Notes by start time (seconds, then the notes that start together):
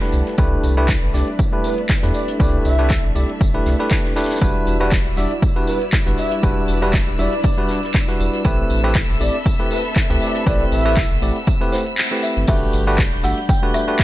Already playing: G3 D4 D5 A5 B5
0.01 A3 D4 E4 G4 B4, snare
0.12 C2 A3 C4 E4 B4, open hi-hat, tambourine
0.26 snare, closed hi-hat
0.38 C2 A3 D4 E4 G4 B4, kick, closed hi-hat, tambourine
0.63 C2, open hi-hat, tambourine
0.74 A3 D4 E4 G4 B4 E5, closed hi-hat
0.88 kick, snare, clap, closed hi-hat, tambourine
1.02 G1
1.14 C2 A3 D4 E4 G4 D5, snare, open hi-hat, tambourine
1.28 closed hi-hat
1.39 kick, closed hi-hat, tambourine
1.52 A3 D4 E4 G4 B4
1.64 B4, open hi-hat, tambourine
1.78 closed hi-hat
1.89 kick, snare, clap, closed hi-hat, tambourine
2.03 E2 A3 D4 E4 G4 B4, closed hi-hat
2.14 A4 D5, open hi-hat, tambourine
2.28 closed hi-hat
2.39 C2 A3 D4 E4 G4 B4 D5, kick, closed hi-hat, tambourine
2.65 C2 E5, open hi-hat, tambourine
2.78 A3 D4 E4 G4 B4, closed hi-hat
2.90 kick, snare, clap, closed hi-hat, tambourine
3.04 G1
3.15 C2 A3 D4 E4 G4 D5, open hi-hat, tambourine
3.29 closed hi-hat
3.41 G1, kick, closed hi-hat, tambourine
3.54 A3 D4 E4 G4 B4
3.66 C2, snare, open hi-hat, tambourine
3.79 A3 D4 E4 G4 B4, snare, closed hi-hat
3.91 kick, snare, clap, open hi-hat, tambourine
4.05 snare
4.16 A3 D4 E4 G4 B4, snare, open hi-hat, tambourine
4.24 snare, tambourine
4.30 snare, closed hi-hat, tambourine
4.35 snare, tambourine
4.41 E1 G3 D4 E4 F#4 B4 D5 E6, kick, closed hi-hat, tambourine, shaker
4.55 shaker
4.67 E1, open hi-hat, tambourine, shaker
4.80 G3 D4 E4 F#4 B4, cross-stick, closed hi-hat, shaker
4.91 kick, snare, clap, closed hi-hat, tambourine, shaker
5.06 D1, shaker
5.16 E1 G3 D4 E4 F#4 D5 E5, snare, open hi-hat, tambourine, shaker
5.30 B4, closed hi-hat, shaker
5.42 kick, closed hi-hat, tambourine, shaker
5.55 G3 D4 E4 F#4 B4, shaker
5.67 B4, open hi-hat, tambourine, shaker
5.81 closed hi-hat, shaker
5.93 kick, snare, clap, closed hi-hat, tambourine, shaker
6.06 G1 G3 D4 E4 F#4 B4, closed hi-hat, shaker
6.18 E5, open hi-hat, tambourine, shaker
6.31 closed hi-hat, shaker
6.43 E1 G3 D4 E4 F#4 B4, kick, closed hi-hat, tambourine, shaker
6.57 shaker
6.68 E1, open hi-hat, tambourine, shaker
6.82 G3 D4 E4 F#4 B4, cross-stick, closed hi-hat, shaker
6.94 kick, snare, clap, closed hi-hat, tambourine, shaker
7.07 D1, shaker
7.19 E1 G3 D4 E4 F#4 D5 E5, open hi-hat, tambourine, shaker
7.33 closed hi-hat, shaker
7.44 kick, closed hi-hat, tambourine, shaker
7.58 G3 D4 E4 F#4 B4, shaker
7.69 snare, open hi-hat, tambourine, shaker
7.83 snare, closed hi-hat, shaker
7.94 kick, snare, clap, open hi-hat, tambourine, shaker
8.08 G3 D4 E4 F#4 B4, snare, shaker
8.20 E1, open hi-hat, tambourine, shaker
8.34 snare, closed hi-hat, shaker
8.44 A1 A3 C4 E4 G4 A4 B4 B5, kick, closed hi-hat, tambourine, shaker
8.58 shaker
8.65 E5
8.70 A1, open hi-hat, tambourine, shaker
8.84 A3 C4 E4 G4 B4, cross-stick, closed hi-hat, shaker
8.95 kick, snare, clap, closed hi-hat, tambourine, shaker
9.09 G1, shaker
9.20 A1 A3 C4 E4 G4 D5, open hi-hat, tambourine, shaker
9.34 closed hi-hat, shaker
9.46 kick, closed hi-hat, tambourine, shaker
9.59 A3 C4 E4 G4 B4, shaker
9.71 B4, open hi-hat, tambourine, shaker
9.85 closed hi-hat, shaker
9.96 kick, snare, clap, closed hi-hat, tambourine, shaker
10.10 C2 A3 C4 E4 G4 B4, closed hi-hat, shaker
10.21 D5, open hi-hat, tambourine, shaker
10.35 closed hi-hat, shaker
10.46 A1 A3 C4 E4 G4 B4 D5 F#5, kick, closed hi-hat, tambourine, shaker
10.60 shaker
10.72 A1 E5, open hi-hat, tambourine, shaker
10.85 A3 C4 E4 G4 B4, cross-stick, closed hi-hat, shaker
10.97 kick, snare, clap, closed hi-hat, tambourine, shaker
11.11 G1, shaker
11.22 A1 A3 C4 E4 G4 D5, open hi-hat, tambourine, shaker
11.36 closed hi-hat, shaker
11.47 kick, closed hi-hat, tambourine, shaker
11.61 A3 C4 E4 G4 B4, shaker
11.72 C5, snare, open hi-hat, tambourine, shaker
11.86 closed hi-hat, shaker
11.98 snare, clap, open hi-hat, tambourine, shaker
12.11 A3 C4 E4 G4 B4, shaker
12.23 E5, open hi-hat, tambourine, shaker
12.36 G1, closed hi-hat, shaker
12.47 G1 G3 A3 D4 F#4 G4 B4 D5 E5 B5 G6, kick, closed hi-hat, crash, tambourine, shaker
12.61 shaker
12.73 G1, open hi-hat, ride, tambourine, shaker
12.87 A3 D4 F#4 G4 B4, closed hi-hat, shaker
12.98 kick, snare, clap, closed hi-hat, tambourine, shaker
13.12 D1, shaker
13.23 G1 A3 D4 F#4 G4 E5 F#5, snare, open hi-hat, ride, tambourine, shaker
13.38 closed hi-hat, shaker
13.49 G5, kick, closed hi-hat, tambourine, shaker
13.62 A3 D4 F#4 G4 B4
13.74 E5, cross-stick, open hi-hat, ride, tambourine, shaker
13.88 A3 D4 F#4 G4 B4, closed hi-hat, shaker
13.99 kick, snare, clap, closed hi-hat, tambourine, shaker